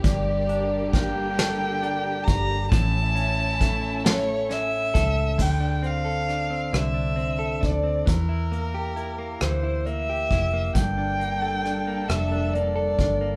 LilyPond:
<<
  \new Staff \with { instrumentName = "Violin" } { \time 6/8 \key d \minor \tempo 4. = 45 d''4 g''4. bes''8 | a''4. cis''8 e''4 | g''8 f''4 e''4 d''8 | bes'4. c''8 e''4 |
g''4. e''8 d''4 | }
  \new Staff \with { instrumentName = "Clean electric guitar" } { \time 6/8 \key d \minor g,8 d'8 bes8 a'8 d'4 | a,8 cis'8 a8 a'8 cis'8 a'8 | d16 d'16 c'16 a'16 d'16 c'16 d16 d'16 c'16 a'16 d'16 c'16 | e16 e'16 bes16 g'16 e'16 bes16 e16 e'16 bes16 g'16 e'16 bes16 |
g,16 d'16 bes16 a'16 d'16 bes16 g,16 d'16 bes16 a'16 d'16 bes16 | }
  \new Staff \with { instrumentName = "String section" } { \time 6/8 \key d \minor <d g bes g'>2. | <cis' e'>2. | r2. | r2. |
<g bes d' a'>2. | }
  \new Staff \with { instrumentName = "Fingered electric bass" } { \clef bass \time 6/8 \key d \minor g,,2~ g,,8 g,,8 | a,,2~ a,,8 cis,8 | d,4. c,4 d,8 | e,4. d,4 f,,8 |
g,,4. f,,4 g,,8 | }
  \new DrumStaff \with { instrumentName = "Drums" } \drummode { \time 6/8 <hh bd>8 hh8 <hh bd sn>8 <hh sn>8 hh8 <hh bd>8 | <hh bd>8 hh8 <hh bd>8 <hh sn>8 <hh sn>8 <hh bd>8 | <cymc bd>8 hh8 <hh ss>8 <hh ss>8 hh8 <hh bd>8 | <hh bd>8 hh8 hh8 <hh ss>8 hh8 <hh bd>8 |
<hh bd>8 hh8 <hh ss>8 <hh ss>8 hh8 <hh bd>8 | }
>>